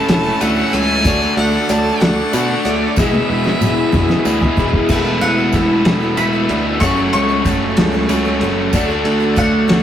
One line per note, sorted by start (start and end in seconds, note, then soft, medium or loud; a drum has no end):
0.00 0.39 E3 medium
0.00 0.40 A3 medium
0.00 0.40 C#4 medium
0.00 0.41 E4 medium
0.00 2.94 A4 medium
0.00 1.04 E5 medium
0.00 2.93 F#5 medium
0.00 1.04 C#6 medium
0.08 0.29 E1 medium
0.08 0.25 E3 medium
0.08 0.25 F#3 medium
0.08 0.26 A3 medium
0.08 0.25 C#4 medium
0.08 0.23 A4 medium
0.08 0.42 A5 medium
0.08 snare loud
0.08 closed hi-hat medium
0.25 0.58 A3 soft
0.25 0.57 C#4 soft
0.25 0.55 A4 medium
0.41 0.62 D2 medium
0.41 1.03 E3 medium
0.41 1.04 A3 medium
0.41 1.04 C#4 medium
0.41 1.05 E4 medium
0.41 0.75 F#5 loud
0.41 closed hi-hat medium
0.41 tambourine loud
0.56 0.72 A3 soft
0.56 0.73 C#4 soft
0.56 0.73 A4 medium
0.72 1.06 C#2 medium
0.72 1.04 F#3 medium
0.72 1.05 A3 medium
0.72 1.06 C#4 medium
0.72 1.06 A4 medium
0.72 1.37 G#5 loud
0.72 closed hi-hat medium
1.04 1.26 D2 medium
1.04 2.31 D3 medium
1.04 1.21 D3 medium
1.04 1.21 F#3 medium
1.04 1.22 A3 medium
1.04 2.32 A3 medium
1.04 1.20 D4 medium
1.04 2.32 D4 loud
1.04 2.33 F#4 medium
1.04 1.19 A4 loud
1.04 2.95 D5 medium
1.04 2.95 D6 medium
1.04 kick loud
1.04 closed hi-hat medium
1.04 tambourine medium
1.20 1.53 A3 medium
1.20 1.52 D4 medium
1.20 1.50 A4 medium
1.20 tambourine soft
1.37 1.57 D2 medium
1.37 1.72 F#5 medium
1.37 closed hi-hat medium
1.51 1.68 A3 soft
1.51 1.69 D4 soft
1.51 1.68 A4 medium
1.51 tambourine soft
1.68 1.90 D2 loud
1.68 2.00 F#3 medium
1.68 2.00 A3 medium
1.68 2.01 D4 medium
1.68 2.01 A4 medium
1.68 2.03 A5 loud
1.68 closed hi-hat medium
1.68 tambourine medium
2.00 2.22 D2 medium
2.00 2.17 D3 medium
2.00 2.17 F#3 medium
2.00 2.18 A3 medium
2.00 2.17 D4 medium
2.00 2.15 A4 medium
2.00 2.67 F#5 medium
2.00 snare loud
2.00 closed hi-hat medium
2.16 2.50 A3 soft
2.16 2.48 D4 soft
2.16 2.46 A4 soft
2.33 2.54 B2 medium
2.33 2.95 D3 medium
2.33 2.96 A3 medium
2.33 2.96 D4 medium
2.33 2.96 F#4 medium
2.33 closed hi-hat medium
2.33 tambourine loud
2.48 2.63 A3 soft
2.48 2.65 D4 soft
2.48 2.65 A4 medium
2.63 2.86 D2 medium
2.63 2.96 F#3 medium
2.63 2.97 A3 medium
2.63 2.97 D4 medium
2.63 2.98 A4 medium
2.63 2.98 D5 medium
2.63 closed hi-hat medium
2.96 3.18 E1 medium
2.96 4.24 E2 loud
2.96 4.24 B2 medium
2.96 3.13 E3 medium
2.96 4.24 E3 medium
2.96 4.24 G#3 medium
2.96 3.13 B3 medium
2.96 4.25 B3 medium
2.96 3.12 E4 medium
2.96 4.25 E4 medium
2.96 3.10 G#4 medium
2.96 4.87 B4 medium
2.96 4.86 E5 medium
2.96 4.54 E5 medium
2.96 4.87 G#5 medium
2.96 4.87 E6 medium
2.96 kick loud
2.96 snare medium
2.96 tambourine medium
3.11 3.46 B3 soft
3.11 3.45 E4 medium
3.11 3.43 G#4 medium
3.11 high tom medium
3.30 3.50 E1 medium
3.44 3.61 B3 soft
3.44 3.62 E4 soft
3.44 3.61 G#4 medium
3.44 snare medium
3.61 3.82 E1 medium
3.61 3.91 E3 medium
3.61 3.92 B3 medium
3.61 3.93 E4 medium
3.61 3.93 G#4 medium
3.61 mid tom medium
3.61 tambourine medium
3.92 4.13 E1 loud
3.92 4.09 E3 medium
3.92 4.09 B3 medium
3.92 4.09 E4 medium
3.92 4.08 G#4 medium
3.92 kick medium
3.92 mid tom medium
3.92 tambourine soft
4.09 4.43 B3 soft
4.09 4.41 E4 soft
4.09 4.39 G#4 medium
4.09 snare medium
4.25 4.46 D2 medium
4.25 4.87 E2 medium
4.25 4.88 B2 medium
4.25 4.88 E3 medium
4.25 4.88 G#3 medium
4.25 4.88 B3 medium
4.25 4.88 E4 medium
4.25 tambourine loud
4.40 4.57 B3 medium
4.40 4.58 E4 medium
4.40 4.57 G#4 medium
4.40 floor tom medium
4.57 4.78 E1 medium
4.57 4.88 E3 medium
4.57 4.89 B3 medium
4.57 4.89 E4 medium
4.57 4.91 G#4 medium
4.57 kick medium
4.74 kick medium
4.87 5.21 E1 medium
4.87 6.15 E2 medium
4.87 6.15 B2 medium
4.87 5.05 E3 medium
4.87 6.16 E3 medium
4.87 6.18 A3 medium
4.87 5.06 B3 medium
4.87 6.16 B3 loud
4.87 5.05 E4 medium
4.87 6.16 E4 medium
4.87 6.79 B4 medium
4.87 6.79 E5 medium
4.87 6.78 A5 medium
4.87 6.79 E6 medium
4.87 kick medium
4.87 crash loud
4.87 tambourine medium
4.92 5.04 A4 medium
5.05 5.39 B3 soft
5.05 5.38 E4 medium
5.05 5.36 A4 medium
5.21 5.52 E1 medium
5.21 6.15 F#5 medium
5.21 ride medium
5.37 5.53 B3 soft
5.37 5.54 E4 soft
5.37 5.53 A4 medium
5.52 5.84 E1 medium
5.52 5.84 E3 medium
5.52 5.85 B3 medium
5.52 5.85 E4 medium
5.52 5.87 A4 medium
5.52 kick medium
5.52 ride medium
5.52 tambourine medium
5.85 6.16 E1 medium
5.85 6.01 E3 medium
5.85 6.02 B3 medium
5.85 6.01 E4 medium
5.85 5.99 A4 medium
5.85 snare loud
5.85 ride medium
6.01 6.35 B3 soft
6.01 6.33 E4 soft
6.01 6.32 A4 soft
6.17 6.48 E1 medium
6.17 6.79 E2 medium
6.17 6.79 B2 medium
6.17 6.80 E3 medium
6.17 6.82 A3 medium
6.17 6.80 B3 medium
6.17 6.80 E4 medium
6.17 6.79 B5 medium
6.17 ride medium
6.17 tambourine medium
6.33 6.49 B3 soft
6.33 6.50 E4 soft
6.33 6.49 A4 medium
6.49 6.80 D2 medium
6.49 6.81 E3 medium
6.49 6.82 B3 medium
6.49 6.82 E4 medium
6.49 6.81 A4 medium
6.49 ride medium
6.80 7.12 F#1 medium
6.80 6.97 F#2 medium
6.80 8.07 F#2 medium
6.80 6.97 C#3 medium
6.80 8.08 C#3 medium
6.80 6.98 F#3 medium
6.80 8.08 F#3 loud
6.80 6.98 A3 medium
6.80 8.10 A3 loud
6.80 6.97 C#4 medium
6.80 8.08 C#4 medium
6.80 8.09 F#4 medium
6.80 9.83 A4 medium
6.80 6.95 A4 medium
6.80 8.71 C#5 medium
6.80 9.83 F#5 medium
6.80 7.12 C#6 medium
6.80 8.71 C#6 medium
6.80 kick medium
6.80 ride medium
6.80 tambourine medium
6.97 7.30 F#3 soft
6.97 7.30 A3 soft
6.97 7.28 C#4 medium
6.97 7.27 A4 medium
7.13 7.45 C#2 medium
7.13 9.01 C#6 loud
7.13 ride medium
7.13 tambourine soft
7.29 7.43 F#3 soft
7.29 7.45 A3 soft
7.29 7.45 C#4 soft
7.29 7.45 A4 medium
7.45 7.76 F#1 medium
7.45 7.76 F#3 medium
7.45 7.77 A3 medium
7.45 7.77 C#4 medium
7.45 7.78 A4 medium
7.45 kick medium
7.45 ride medium
7.45 tambourine medium
7.76 8.08 C#2 medium
7.76 7.93 F#2 medium
7.76 7.93 C#3 medium
7.76 7.93 F#3 medium
7.76 7.93 A3 medium
7.76 7.92 C#4 medium
7.76 7.91 A4 medium
7.76 snare loud
7.76 ride loud
7.92 8.26 F#3 soft
7.92 8.26 A3 medium
7.92 8.25 C#4 medium
7.92 8.24 A4 medium
8.09 8.40 C#2 medium
8.09 8.71 F#2 medium
8.09 8.71 C#3 medium
8.09 8.72 F#3 medium
8.09 8.74 A3 medium
8.09 8.72 C#4 medium
8.09 8.72 F#4 medium
8.09 ride medium
8.09 tambourine medium
8.25 8.40 F#3 soft
8.25 8.41 A3 medium
8.25 8.42 C#4 medium
8.25 8.41 A4 medium
8.41 8.72 F#1 medium
8.41 8.72 F#3 medium
8.41 8.73 A3 medium
8.41 8.74 C#4 medium
8.41 8.74 A4 medium
8.41 ride medium
8.71 9.04 D2 medium
8.71 8.89 D3 medium
8.71 9.83 D3 medium
8.71 8.89 F#3 medium
8.71 8.90 A3 loud
8.71 9.83 A3 medium
8.71 8.90 D4 medium
8.71 9.83 D4 medium
8.71 8.88 A4 loud
8.71 9.83 D5 medium
8.71 9.83 A5 medium
8.71 kick medium
8.71 ride medium
8.71 tambourine medium
8.76 9.83 F#4 medium
8.89 9.22 A3 soft
8.89 9.21 D4 medium
8.89 9.19 A4 medium
9.05 9.36 D2 medium
9.05 ride medium
9.05 tambourine soft
9.20 9.36 A3 soft
9.20 9.37 D4 soft
9.20 9.37 A4 medium
9.36 9.68 D2 medium
9.36 9.67 F#3 medium
9.36 9.68 A3 medium
9.36 9.68 D4 medium
9.36 9.69 A4 medium
9.36 9.83 F#5 medium
9.36 kick medium
9.36 ride medium
9.36 tambourine medium
9.68 9.83 D2 medium
9.68 9.83 D3 medium
9.68 9.83 F#3 medium
9.68 9.83 A3 medium
9.68 9.83 D4 medium
9.68 9.83 A4 medium
9.68 snare loud
9.68 ride loud